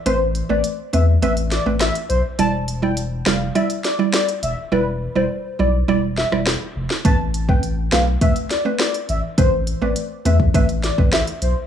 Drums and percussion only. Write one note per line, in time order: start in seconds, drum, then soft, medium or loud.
0.06 closed hi-hat medium
0.35 closed hi-hat medium
0.64 closed hi-hat medium
0.93 closed hi-hat medium
1.23 closed hi-hat medium
1.37 closed hi-hat medium
1.52 snare medium
1.52 closed hi-hat medium
1.80 cross-stick medium
1.80 snare loud
1.80 closed hi-hat medium
1.95 closed hi-hat medium
2.10 closed hi-hat medium
2.39 closed hi-hat medium
2.68 closed hi-hat medium
2.97 closed hi-hat medium
3.26 cross-stick medium
3.26 snare loud
3.26 closed hi-hat medium
3.55 closed hi-hat medium
3.70 closed hi-hat medium
3.85 snare medium
3.85 closed hi-hat medium
4.13 cross-stick medium
4.13 snare loud
4.13 closed hi-hat medium
4.29 closed hi-hat medium
4.43 closed hi-hat medium
6.18 snare medium
6.32 cross-stick medium
6.46 cross-stick medium
6.46 snare loud
6.90 snare medium
7.05 kick loud
7.05 closed hi-hat medium
7.34 closed hi-hat medium
7.49 kick medium
7.63 closed hi-hat medium
7.92 cross-stick medium
7.92 snare loud
7.92 closed hi-hat medium
8.21 kick loud
8.21 closed hi-hat medium
8.36 closed hi-hat medium
8.51 snare medium
8.51 closed hi-hat medium
8.79 cross-stick medium
8.79 snare loud
8.79 closed hi-hat medium
8.94 closed hi-hat medium
9.09 closed hi-hat medium
9.38 kick loud
9.38 closed hi-hat medium
9.67 closed hi-hat medium
9.96 closed hi-hat medium
10.25 closed hi-hat medium
10.40 kick medium
10.54 kick loud
10.54 closed hi-hat medium
10.69 closed hi-hat medium
10.84 snare medium
10.84 closed hi-hat medium
10.98 kick loud
11.12 cross-stick medium
11.12 snare loud
11.12 closed hi-hat medium
11.27 closed hi-hat medium
11.42 closed hi-hat medium